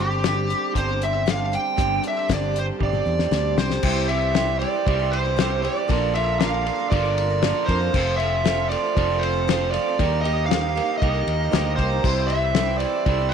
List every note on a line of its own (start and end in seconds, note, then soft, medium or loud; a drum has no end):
0.00 0.53 G1 loud
0.00 0.72 G2 medium
0.00 0.72 D3 medium
0.00 0.11 G3 medium
0.00 0.74 G3 medium
0.00 0.11 C4 medium
0.00 0.74 C4 medium
0.00 3.80 C4 medium
0.00 0.11 D4 medium
0.00 0.75 D4 medium
0.00 3.80 D4 medium
0.00 0.72 G4 medium
0.00 0.75 G4 medium
0.00 3.80 G4 medium
0.00 3.80 C5 medium
0.11 0.23 G3 soft
0.11 0.23 C4 medium
0.11 0.23 D4 medium
0.11 0.23 G4 medium
0.23 0.49 G2 medium
0.23 0.49 D3 medium
0.23 0.47 G3 medium
0.23 0.48 C4 medium
0.23 0.49 D4 medium
0.23 0.50 G4 medium
0.23 snare medium
0.23 closed hi-hat medium
0.48 0.88 G3 medium
0.48 0.88 C4 medium
0.48 0.87 D4 medium
0.48 0.86 G4 medium
0.48 closed hi-hat medium
0.73 1.56 G1 medium
0.73 1.75 G2 medium
0.73 1.76 D3 medium
0.73 1.77 G3 medium
0.73 1.78 C4 medium
0.73 1.77 D4 medium
0.73 1.78 G4 medium
0.73 kick medium
0.73 closed hi-hat medium
0.78 1.03 C5 medium
0.87 1.00 G3 soft
0.87 1.01 C4 soft
0.87 1.01 D4 medium
0.87 1.01 G4 medium
1.01 1.14 G3 soft
1.01 1.14 C4 medium
1.01 1.12 D4 soft
1.01 1.12 G4 medium
1.01 1.29 E5 medium
1.01 closed hi-hat medium
1.13 1.25 G3 soft
1.13 1.26 C4 soft
1.13 1.25 D4 medium
1.13 1.26 G4 medium
1.26 1.52 G2 medium
1.26 1.52 D3 medium
1.26 1.51 G3 medium
1.26 1.51 C4 medium
1.26 1.52 D4 medium
1.26 1.52 G4 medium
1.26 snare loud
1.26 closed hi-hat medium
1.30 1.53 F5 loud
1.52 1.76 G3 medium
1.52 1.76 C4 medium
1.52 1.77 D4 medium
1.52 1.77 G4 medium
1.52 2.02 G5 loud
1.52 closed hi-hat medium
1.77 1.98 G1 medium
1.77 2.03 G2 medium
1.77 2.03 D3 medium
1.77 2.02 G3 medium
1.77 2.03 C4 medium
1.77 2.04 D4 medium
1.77 2.04 G4 medium
1.77 kick loud
1.77 closed hi-hat loud
2.03 2.16 G3 medium
2.03 2.17 C4 medium
2.03 2.16 D4 medium
2.03 2.16 G4 medium
2.03 closed hi-hat medium
2.08 2.30 E5 loud
2.17 2.28 G3 medium
2.17 2.29 C4 medium
2.17 2.29 D4 medium
2.17 2.29 G4 medium
2.29 2.69 G1 loud
2.29 2.55 G2 medium
2.29 2.55 D3 medium
2.29 2.53 G3 medium
2.29 2.53 C4 medium
2.29 2.54 D4 medium
2.29 2.54 G4 medium
2.29 kick medium
2.29 snare loud
2.29 closed hi-hat medium
2.33 2.58 D5 loud
2.54 2.93 G3 medium
2.54 2.92 C4 medium
2.54 2.92 D4 medium
2.54 2.91 G4 medium
2.54 closed hi-hat medium
2.59 2.65 C5 medium
2.79 3.01 G1 medium
2.79 3.81 G2 medium
2.79 3.81 D3 medium
2.79 3.82 G3 medium
2.79 3.82 C4 medium
2.79 3.82 D4 medium
2.79 3.82 G4 medium
2.79 kick medium
2.79 high tom medium
2.83 3.55 D5 medium
2.93 3.04 G3 soft
2.93 3.05 C4 soft
2.93 3.06 D4 medium
2.93 3.05 G4 medium
2.93 high tom medium
3.05 3.29 E2 medium
3.05 3.19 G3 medium
3.05 3.18 C4 medium
3.05 3.17 D4 medium
3.05 3.17 G4 medium
3.18 3.30 G3 soft
3.18 3.30 C4 soft
3.18 3.31 D4 soft
3.18 3.31 G4 medium
3.18 snare medium
3.31 3.55 D2 medium
3.31 3.57 G2 medium
3.31 3.57 D3 medium
3.31 3.56 G3 medium
3.31 3.57 C4 medium
3.31 3.57 D4 medium
3.31 3.57 G4 medium
3.31 snare medium
3.57 3.81 C2 medium
3.57 3.82 G3 medium
3.57 3.83 C4 medium
3.57 3.84 D4 medium
3.57 3.83 G4 medium
3.57 4.06 C5 loud
3.57 snare loud
3.70 snare medium
3.83 4.64 C2 medium
3.83 4.09 C3 medium
3.83 4.33 E3 medium
3.83 4.07 G3 medium
3.83 5.86 C4 medium
3.83 4.08 C4 medium
3.83 5.87 E4 medium
3.83 4.08 E4 medium
3.83 4.31 E4 medium
3.83 5.86 G4 medium
3.83 4.31 G4 medium
3.83 4.09 G4 medium
3.83 5.87 C5 medium
3.83 4.31 C5 medium
3.83 kick loud
3.83 crash loud
4.08 4.34 G3 medium
4.08 4.34 C4 medium
4.08 4.34 E4 medium
4.08 4.34 G4 medium
4.08 4.56 E5 loud
4.08 ride medium
4.12 4.34 G3 medium
4.34 4.60 C3 medium
4.34 4.86 E3 medium
4.34 4.58 G3 medium
4.34 4.59 C4 medium
4.34 4.82 E4 medium
4.34 4.60 E4 medium
4.34 4.82 G4 medium
4.34 4.60 G4 medium
4.34 4.82 C5 medium
4.34 snare loud
4.34 ride medium
4.59 4.73 G3 medium
4.59 4.73 C4 medium
4.59 4.73 E4 medium
4.59 4.71 G4 medium
4.59 5.13 D5 medium
4.59 ride medium
4.73 4.99 C4 soft
4.73 4.99 E4 soft
4.73 4.98 G4 soft
4.86 5.67 C2 medium
4.86 5.64 C3 medium
4.86 5.37 E3 medium
4.86 5.37 G3 loud
4.86 5.39 C4 loud
4.86 5.33 E4 medium
4.86 5.33 G4 medium
4.86 5.39 G4 loud
4.86 5.33 C5 medium
4.86 kick medium
4.86 ride loud
4.99 5.25 C4 soft
4.99 5.25 E4 medium
4.99 5.24 G4 medium
5.11 5.64 C5 loud
5.11 ride medium
5.25 5.36 C4 soft
5.25 5.36 E4 medium
5.25 5.37 G4 medium
5.36 5.62 C3 medium
5.36 5.88 E3 medium
5.36 5.62 G3 medium
5.36 5.63 C4 medium
5.36 5.63 E4 medium
5.36 5.84 E4 medium
5.36 5.63 G4 medium
5.36 5.84 G4 medium
5.36 5.84 C5 medium
5.36 snare loud
5.36 ride medium
5.62 5.76 G3 medium
5.62 5.77 C4 medium
5.62 5.76 E4 medium
5.62 5.75 G4 medium
5.62 6.15 D5 loud
5.62 ride medium
5.76 5.88 C4 soft
5.76 5.88 E4 soft
5.76 5.89 G4 medium
5.87 6.69 A#1 medium
5.87 6.14 A#2 medium
5.87 6.14 D3 medium
5.87 6.12 F3 medium
5.87 7.91 A#3 medium
5.87 6.13 A#3 medium
5.87 7.90 D4 medium
5.87 6.14 D4 medium
5.87 7.91 F4 medium
5.87 6.35 F4 medium
5.87 6.13 F4 medium
5.87 7.91 A#4 medium
5.87 6.35 A#4 medium
5.87 6.14 A#4 medium
5.87 6.35 D5 medium
5.87 kick loud
5.87 ride loud
6.13 6.40 F3 medium
6.13 6.40 A#3 medium
6.13 6.40 D4 medium
6.13 6.42 F4 medium
6.13 6.40 A#4 medium
6.13 6.39 E5 loud
6.13 ride medium
6.39 6.66 A#2 medium
6.39 6.66 D3 medium
6.39 6.66 F3 medium
6.39 6.66 A#3 medium
6.39 6.66 D4 medium
6.39 6.86 F4 medium
6.39 6.64 F4 medium
6.39 6.86 A#4 medium
6.39 6.66 A#4 medium
6.39 6.86 D5 medium
6.39 6.89 F5 loud
6.39 snare loud
6.39 ride loud
6.64 6.79 F3 medium
6.64 6.79 A#3 medium
6.64 6.78 D4 medium
6.64 6.91 F4 medium
6.64 ride medium
6.69 6.77 A#4 medium
6.79 7.05 F3 soft
6.79 7.05 A#3 soft
6.79 7.04 D4 soft
6.79 7.03 A#4 soft
6.90 7.52 G1 loud
6.90 7.68 A#2 loud
6.90 7.40 D3 loud
6.90 7.42 A#3 medium
6.90 7.42 D4 medium
6.90 7.38 F4 medium
6.90 7.43 F4 medium
6.90 7.38 A#4 medium
6.90 7.70 D5 loud
6.90 7.38 D5 medium
6.90 kick loud
6.90 ride loud
7.04 7.30 F3 soft
7.04 7.30 A#3 soft
7.04 7.29 D4 medium
7.04 7.29 A#4 medium
7.18 ride medium
7.30 7.41 F3 soft
7.30 7.42 A#3 soft
7.30 7.42 D4 medium
7.30 7.42 A#4 medium
7.42 7.68 A#2 medium
7.42 7.68 D3 medium
7.42 7.66 F3 medium
7.42 7.67 A#3 medium
7.42 7.68 D4 medium
7.42 7.88 F4 medium
7.42 7.65 F4 medium
7.42 7.89 A#4 medium
7.42 7.68 A#4 medium
7.42 7.89 D5 medium
7.42 snare medium
7.42 ride medium
7.65 7.88 F2 medium
7.65 7.80 F3 medium
7.65 7.81 A#3 medium
7.65 7.80 D4 medium
7.65 7.91 F4 medium
7.65 7.80 A#4 medium
7.65 8.14 C5 loud
7.65 kick medium
7.65 ride medium
7.81 7.93 F3 soft
7.81 7.95 A#3 medium
7.81 7.94 D4 medium
7.81 7.94 A#4 medium
7.93 8.74 F1 medium
7.93 8.44 F2 medium
7.93 8.45 C3 medium
7.93 8.19 F3 medium
7.93 9.97 A3 medium
7.93 8.20 A3 loud
7.93 9.97 C4 medium
7.93 8.20 C4 medium
7.93 8.40 F4 medium
7.93 9.97 F4 medium
7.93 8.20 F4 medium
7.93 8.40 A4 medium
7.93 9.97 A4 medium
7.93 8.20 A4 medium
7.93 8.40 C5 medium
7.93 kick loud
7.93 crash loud
8.16 8.43 F3 medium
8.16 8.68 E5 loud
8.16 ride medium
8.21 8.43 A3 medium
8.21 8.44 C4 medium
8.21 8.44 F4 medium
8.21 8.45 A4 medium
8.44 8.69 F3 medium
8.44 8.71 A3 medium
8.44 8.70 C4 medium
8.44 8.91 F4 medium
8.44 8.71 F4 medium
8.44 8.91 A4 medium
8.44 8.71 A4 medium
8.44 8.91 C5 medium
8.44 snare loud
8.44 ride medium
8.69 8.83 F3 medium
8.69 8.96 A3 medium
8.69 8.84 C4 medium
8.69 8.84 F4 medium
8.69 8.83 A4 medium
8.69 9.22 D5 loud
8.69 ride medium
8.84 9.10 C4 soft
8.84 9.10 F4 soft
8.84 9.09 A4 medium
8.95 9.77 F1 loud
8.95 9.73 F2 medium
8.95 9.73 C3 medium
8.95 9.46 F3 loud
8.95 9.47 A3 loud
8.95 9.48 C4 loud
8.95 9.42 F4 medium
8.95 9.48 F4 loud
8.95 9.42 A4 medium
8.95 9.42 C5 medium
8.95 kick loud
8.95 ride loud
9.10 9.35 C4 medium
9.10 9.35 F4 medium
9.10 9.33 A4 medium
9.19 9.73 C5 loud
9.23 ride medium
9.35 9.47 C4 soft
9.35 9.47 F4 medium
9.35 9.47 A4 medium
9.47 9.73 F3 medium
9.47 9.73 A3 medium
9.47 9.73 C4 medium
9.47 9.94 F4 medium
9.47 9.73 F4 medium
9.47 9.94 A4 medium
9.47 9.74 A4 medium
9.47 9.93 C5 medium
9.47 snare loud
9.47 ride loud
9.70 9.97 A3 medium
9.70 10.21 D5 loud
9.70 ride medium
9.74 9.86 F3 medium
9.74 9.87 C4 medium
9.74 9.87 F4 medium
9.74 9.86 A4 medium
9.88 9.99 C4 soft
9.88 10.00 F4 medium
9.88 9.99 A4 medium
9.99 10.79 D#2 medium
9.99 10.24 D#3 medium
9.99 10.23 G3 medium
9.99 10.24 A#3 medium
9.99 12.02 A#3 medium
9.99 10.45 D#4 medium
9.99 12.02 D#4 medium
9.99 10.24 D#4 medium
9.99 10.45 G4 medium
9.99 10.25 G4 medium
9.99 12.02 G4 medium
9.99 10.45 A#4 medium
9.99 12.03 A#4 medium
9.99 kick loud
9.99 ride loud
10.21 10.49 G3 medium
10.21 10.50 A#3 medium
10.21 10.46 D#5 loud
10.21 ride medium
10.26 10.50 D#4 medium
10.26 10.51 G4 medium
10.46 10.96 D#4 medium
10.46 10.95 F5 loud
10.50 10.76 D#3 medium
10.50 10.74 G3 medium
10.50 10.75 A#3 medium
10.50 10.76 D#4 medium
10.50 10.96 G4 medium
10.50 10.76 G4 medium
10.50 10.97 C5 medium
10.50 snare loud
10.50 ride medium
10.75 10.88 G3 medium
10.75 10.88 A#3 medium
10.75 10.88 D#4 medium
10.75 10.87 G4 medium
10.75 ride medium
10.88 11.15 A#3 soft
10.88 11.14 D#4 soft
10.88 11.13 G4 medium
10.97 11.48 G4 medium
10.97 11.72 D#5 medium
11.01 11.22 C2 loud
11.01 11.51 D#3 medium
11.01 11.52 A#3 loud
11.01 11.48 D#4 medium
11.01 11.52 D#4 medium
11.01 11.53 G4 loud
11.01 11.48 A#4 medium
11.01 kick medium
11.01 ride loud
11.14 11.39 A#3 medium
11.14 11.39 D#4 soft
11.14 11.38 G4 medium
11.27 11.50 D#2 medium
11.27 ride medium
11.39 11.51 A#3 soft
11.39 11.51 D#4 medium
11.39 11.52 G4 medium
11.51 11.76 D2 medium
11.51 11.77 D#3 medium
11.51 11.77 G3 medium
11.51 11.78 A#3 medium
11.51 11.98 D#4 medium
11.51 11.78 D#4 medium
11.51 11.98 G4 medium
11.51 11.78 G4 medium
11.51 11.98 C5 medium
11.51 snare medium
11.51 ride medium
11.76 12.01 C2 medium
11.76 11.91 G3 medium
11.76 11.91 A#3 medium
11.76 11.91 D#4 medium
11.76 12.29 C5 medium
11.76 kick medium
11.76 ride medium
11.80 11.90 G4 medium
11.91 12.04 A#3 soft
11.91 12.04 D#4 medium
11.91 12.04 G4 medium
12.04 12.84 C2 medium
12.04 12.29 C3 medium
12.04 12.54 E3 medium
12.04 12.29 G3 medium
12.04 13.34 C4 medium
12.04 12.29 C4 medium
12.04 12.50 E4 medium
12.04 13.34 E4 medium
12.04 12.30 E4 medium
12.04 13.34 G4 medium
12.04 12.50 G4 medium
12.04 12.30 G4 medium
12.04 12.50 C5 medium
12.04 13.34 C5 medium
12.04 kick loud
12.04 crash loud
12.27 12.55 G3 medium
12.27 12.55 C4 medium
12.27 12.77 E5 loud
12.27 ride medium
12.31 12.56 E4 medium
12.31 12.56 G4 medium
12.55 12.81 C3 medium
12.55 13.05 E3 medium
12.55 12.80 G3 medium
12.55 12.80 C4 medium
12.55 13.01 E4 medium
12.55 12.81 E4 medium
12.55 13.01 G4 medium
12.55 12.82 G4 medium
12.55 13.01 C5 medium
12.55 snare loud
12.55 ride medium
12.78 12.93 G3 medium
12.78 13.32 D5 medium
12.78 ride medium
12.82 12.94 C4 medium
12.82 12.94 E4 medium
12.82 12.93 G4 medium
12.94 13.20 C4 soft
12.94 13.20 E4 medium
12.94 13.18 G4 soft
13.06 13.34 C2 medium
13.06 13.34 C3 medium
13.06 13.34 E3 medium
13.06 13.34 G3 loud
13.06 13.34 C4 loud
13.06 13.34 E4 medium
13.06 13.34 G4 medium
13.06 13.34 A4 medium
13.06 kick medium
13.06 ride loud
13.20 13.34 C4 soft
13.20 13.34 E4 soft
13.20 13.34 G4 medium
13.29 13.34 C5 medium